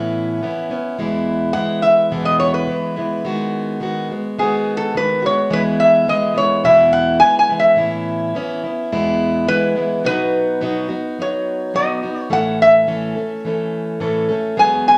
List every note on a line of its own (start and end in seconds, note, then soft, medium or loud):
0.00 0.41 A2 medium
0.00 0.41 E3 medium
0.00 0.42 B3 medium
0.00 0.42 C#4 medium
0.00 0.42 E4 medium
0.00 0.64 B4 medium
0.42 0.71 E3 medium
0.42 0.70 B3 medium
0.42 0.69 C#4 medium
0.42 0.68 E4 medium
0.70 0.98 B3 soft
0.70 0.99 C#4 soft
0.70 0.99 E4 medium
0.98 1.56 E2 medium
0.98 1.56 B2 medium
0.98 1.53 E3 medium
0.98 1.54 G#3 medium
0.98 1.55 B3 medium
0.98 1.55 E4 medium
1.53 2.11 E3 medium
1.53 2.11 G#3 medium
1.53 2.11 B3 medium
1.53 2.12 E4 medium
1.53 1.82 F#5 medium
1.82 2.25 E5 medium
2.11 2.68 E2 medium
2.11 2.69 B2 medium
2.11 2.65 E3 medium
2.11 2.67 G#3 medium
2.11 2.68 B3 medium
2.11 2.68 E4 medium
2.25 2.39 D#5 medium
2.40 2.54 C#5 medium
2.54 3.36 B4 medium
2.67 2.96 E3 soft
2.67 2.96 G#3 medium
2.67 2.96 B3 medium
2.67 2.95 E4 medium
2.96 3.24 E3 soft
2.96 3.24 G#3 soft
2.96 3.24 B3 soft
2.96 3.25 E4 soft
3.25 3.79 D#3 medium
3.25 3.81 G#3 medium
3.25 3.81 B3 medium
3.25 3.82 F#4 medium
3.80 4.10 D#3 medium
3.80 4.10 G#3 medium
3.80 4.10 B3 medium
3.80 4.09 F#4 medium
4.10 4.37 G#3 soft
4.10 4.39 B3 soft
4.10 4.39 F#4 soft
4.39 4.93 D#3 medium
4.39 4.94 G#3 medium
4.39 4.96 B3 medium
4.39 4.96 F#4 medium
4.39 4.77 G#4 medium
4.77 4.97 A4 medium
4.95 5.24 D#3 medium
4.95 5.23 G#3 medium
4.95 5.23 B3 medium
4.95 5.21 F#4 medium
4.95 5.26 B4 medium
5.22 5.49 G#3 soft
5.22 5.50 B3 soft
5.22 5.51 F#4 medium
5.22 5.53 C#5 medium
5.50 6.08 E2 medium
5.50 6.09 B2 medium
5.50 6.06 E3 medium
5.50 6.07 G#3 medium
5.50 6.08 B3 medium
5.50 6.08 E4 medium
5.50 5.61 B4 medium
5.80 6.09 E5 medium
6.07 6.35 E3 medium
6.07 6.35 G#3 medium
6.07 6.34 B3 medium
6.07 6.33 E4 medium
6.07 6.37 D#5 medium
6.34 6.63 E3 soft
6.34 6.64 G#3 soft
6.34 6.64 B3 soft
6.34 6.64 E4 soft
6.34 6.64 C#5 medium
6.64 7.22 E2 medium
6.64 7.22 B2 medium
6.64 7.19 E3 medium
6.64 7.20 G#3 medium
6.64 7.22 B3 medium
6.64 7.22 E4 loud
6.64 6.92 E5 medium
6.93 7.19 F#5 medium
7.20 7.50 E3 soft
7.20 7.49 G#3 medium
7.20 7.48 B3 medium
7.20 7.48 E4 medium
7.20 7.38 G#5 loud
7.39 7.60 G#5 medium
7.49 7.75 E3 soft
7.49 7.77 G#3 soft
7.49 7.76 B3 medium
7.49 7.77 E4 medium
7.60 8.97 E5 medium
7.76 8.34 A2 medium
7.76 8.34 E3 medium
7.76 8.34 B3 medium
7.76 8.35 C#4 medium
7.76 8.35 E4 medium
8.35 8.64 E3 medium
8.35 8.64 B3 medium
8.35 8.63 C#4 medium
8.35 8.62 E4 medium
8.64 8.91 B3 soft
8.64 8.92 C#4 soft
8.64 8.91 E4 soft
8.92 9.49 E2 medium
8.92 9.49 B2 medium
8.92 9.45 E3 medium
8.92 9.46 G#3 medium
8.92 9.47 B3 medium
8.92 9.47 E4 loud
9.47 9.75 E3 medium
9.47 9.76 G#3 medium
9.47 9.74 B3 medium
9.47 9.74 E4 medium
9.47 10.05 B4 loud
9.75 10.04 E3 soft
9.75 10.04 G#3 medium
9.75 10.03 B3 medium
9.75 10.04 E4 medium
10.04 10.60 B2 medium
10.04 10.60 F#3 medium
10.04 10.60 B3 medium
10.04 10.61 D#4 medium
10.04 10.61 F#4 medium
10.04 10.87 B4 loud
10.61 10.90 B2 medium
10.61 10.90 F#3 medium
10.61 10.89 B3 medium
10.61 10.88 D#4 medium
10.61 10.87 F#4 medium
10.88 11.18 B3 soft
10.88 11.18 D#4 soft
10.88 11.18 F#4 medium
11.19 11.73 F#3 medium
11.19 11.73 B3 medium
11.19 11.73 D#4 medium
11.19 11.74 F#4 medium
11.19 11.75 C#5 medium
11.74 12.03 B2 medium
11.74 12.03 F#3 medium
11.74 12.03 B3 medium
11.74 12.02 D#4 medium
11.74 12.02 F#4 medium
11.74 12.21 D#5 medium
12.03 12.30 B3 soft
12.03 12.30 D#4 soft
12.03 12.30 F#4 soft
12.21 12.33 C#5 medium
12.30 12.86 A2 medium
12.30 12.87 E3 medium
12.30 12.87 A3 medium
12.30 12.87 C#4 medium
12.30 12.87 A4 medium
12.30 12.61 F#5 medium
12.62 13.41 E5 medium
12.87 13.16 A2 medium
12.87 13.16 E3 medium
12.87 13.15 A3 medium
12.87 13.15 C#4 medium
12.87 13.14 A4 medium
13.15 13.45 A3 soft
13.15 13.44 C#4 soft
13.15 13.44 A4 soft
13.45 14.00 E3 medium
13.45 14.00 A3 medium
13.45 14.00 C#4 medium
13.45 14.00 A4 medium
14.00 14.29 A2 medium
14.00 14.29 E3 medium
14.00 14.29 A3 medium
14.00 14.29 C#4 medium
14.00 14.28 A4 medium
14.29 14.57 A3 soft
14.29 14.57 C#4 medium
14.29 14.57 A4 medium
14.56 14.98 E2 medium
14.56 14.98 B2 medium
14.56 14.98 F#3 medium
14.56 14.98 G#3 medium
14.56 14.98 B3 medium
14.56 14.98 G#4 medium
14.56 14.87 G#5 loud
14.88 14.98 G#5 loud